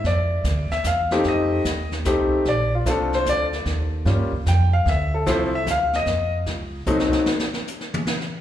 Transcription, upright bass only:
X:1
M:3/4
L:1/8
Q:"Swing" 1/4=150
K:F
V:1 name="Upright bass" clef=bass
F,,2 D,, z E,,2 | F,,2 _E,,2 C,, z | B,,,2 C,,2 D,,2 | _E,,2 (3G,, E,, _D,, F,,2 |
D,,2 C,,2 D,,2 | F,,2 ^C,,2 =C,, z | [K:Bbm] z6 |]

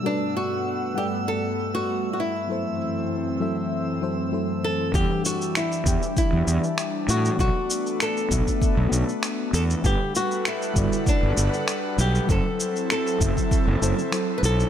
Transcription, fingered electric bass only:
X:1
M:4/4
L:1/16
Q:1/4=98
K:Em
V:1 name="Fingered electric bass" clef=bass
z16 | z16 | E,, z4 z E,, z2 E,, E,, z3 A,, z | B,,, z4 z B,,, z2 B,,, B,,, z3 E,, z |
G,,, z4 z G,,, z2 G,,, G,,, z3 B,,, z | F,,, z4 z F,,, z2 F,,, F,,, z3 B,,, z |]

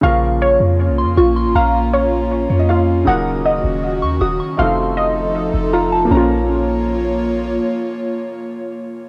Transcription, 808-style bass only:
X:1
M:4/4
L:1/16
Q:1/4=158
K:Bbm
V:1 name="808-style bass" clef=bass
B,,,6 F,,3 C,,3/2 F,,3/2 B,,,3 =A,,, | B,,,8- B,,,2 F,,6 | E,,,6 E,,,4 E,,2 E,,,2 z2 | F,,,8- F,,,2 F,,,6 |
B,,,16 | z16 |]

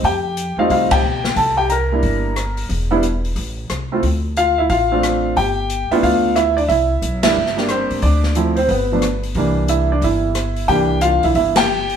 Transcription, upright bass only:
X:1
M:4/4
L:1/8
Q:"Swing" 1/4=180
K:Cmix
V:1 name="Upright bass" clef=bass
F,,3 E,, C,,2 =B,,,2 | C,,4 G,,,4 | E,,,4 A,,,2 C,,2 | D,,4 A,,,4 |
G,,,3 z D,,4 | C,,2 =B,,,2 G,,,3 A,, | D,,4 G,,,4 | C,,4 G,,,4 |
C,,3 =B,,, G,,,4 |]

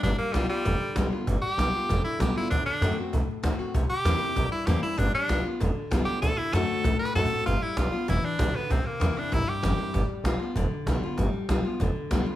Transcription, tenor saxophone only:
X:1
M:4/4
L:1/8
Q:1/4=194
K:Gmix
V:1 name="Tenor saxophone"
D _B, G, G,4 z | z G4 E G E | D D2 z4 z | z G4 E G E |
D D2 z4 G | A E A3 B A2 | F E F2 E D2 B, | C _B,2 D E G3- |
G z6 z | z8 |]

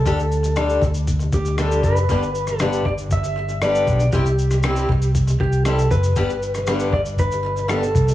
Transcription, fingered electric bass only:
X:1
M:4/4
L:1/8
Q:1/4=118
K:G
V:1 name="Fingered electric bass" clef=bass
D,,3 D,,2 D,,2 F,,, | G,,,3 G,,, G,,,3 B,,, | C,,3 C,,2 C,,2 F,,, | G,,,3 G,,, G,,,3 C,, |]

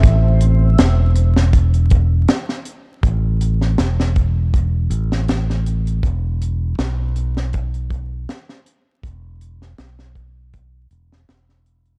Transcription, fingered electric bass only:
X:1
M:4/4
L:1/8
Q:"Swing 16ths" 1/4=80
K:Ephr
V:1 name="Fingered electric bass" clef=bass
A,,,2 E,,,4 z2 | A,,,2 E,,,3 A,,,3 | E,,,2 B,,,4 z2 | E,,,2 B,,,3 E,,, E,,,2 |]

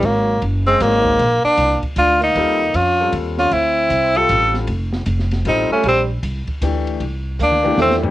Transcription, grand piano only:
X:1
M:3/4
L:1/8
Q:"Swing" 1/4=155
K:Bblyd
V:1 name="Grand piano"
z4 [B,_E_Ac]2 | z6 | [G,CFA] z2 [G,CFA]3 | z3 [G,CFA]3 |
z4 [G,CFA]2 | z4 [E,A,DG]2 | z3 [E,A,DG]2 [F,,E,A,DG] |]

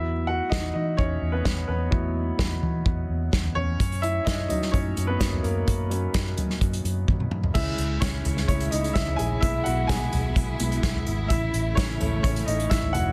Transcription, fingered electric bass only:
X:1
M:4/4
L:1/8
Q:1/4=128
K:E
V:1 name="Fingered electric bass" clef=bass
E,,2 E,, E, E,, E,, z E,, | E,,2 E,, E, E,, E,, z E,, | F,,2 F,, F, F,, F,, F,, F,, | F,,2 F,, F, F,, F,, F,, F,, |
C,, C,, C,, C,, C,, C,, C,, ^A,,, | B,,, B,,, z B,,, B,,, B,,, B,,, G,,, | A,,, A,,, A,,, A,,, A,,, A,,, A,,, ^E,,, |]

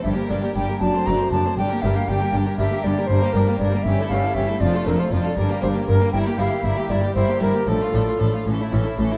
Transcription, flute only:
X:1
M:6/8
L:1/16
Q:3/8=79
K:Gdor
V:1 name="Flute"
e2 d2 g2 a2 b2 a2 | g2 e f g4 e2 d2 | [K:Dm] c2 B2 d2 e2 f2 e2 | d2 B c d4 c2 B2 |
g2 f2 e2 d2 c2 B2 | A6 z6 |]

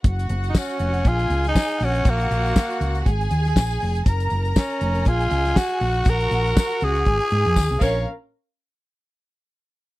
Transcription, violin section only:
X:1
M:4/4
L:1/8
Q:"Swing 16ths" 1/4=120
K:Gblyd
V:1 name="Violin section"
[Gg]4 [Aa]3 [Gg]- | [Gg]4 [Aa]4 | [Bb]4 [Aa]3 [Gg]- | [Gg]4 [Aa]3 [DBf] |
z8 |]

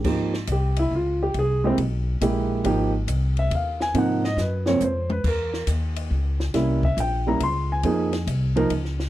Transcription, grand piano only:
X:1
M:3/4
L:1/8
Q:"Swing" 1/4=139
K:Ab
V:1 name="Grand piano"
z2 G _F =F G | A C z4 | z3 _f =f a | _g e _c d =c _c |
B2 z4 | z =e g b c' a- | a2 z4 |]
V:2 name="Grand piano"
[F,B,EG] z4 z | z [A,B,=EG] z2 [A,B,EG]2 | [F,B,EG] z4 z | [C,F,B,E] z2 [C,F,B,C] z2 |
z6 | [G,B,D=E] z2 [G,B,DE] z2 | [F,B,EA] z2 [F,B,EB] z2 |]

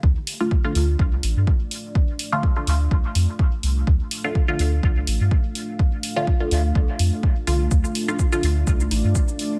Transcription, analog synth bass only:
X:1
M:4/4
L:1/16
Q:"Swing 16ths" 1/4=125
K:Dm
V:1 name="Analog synth bass" clef=bass
D,, z4 z D,,2 C,,2 A,,, G,, z4 | z6 D,,2 C,, z F,, z3 C,,2 | D,, z4 z D,,2 C,,2 A,,, G,, z4 | z6 D,,2 C,, z F,, z3 C,,2 |
D,, z4 z D,,2 C,,2 A,,, G,, z4 |]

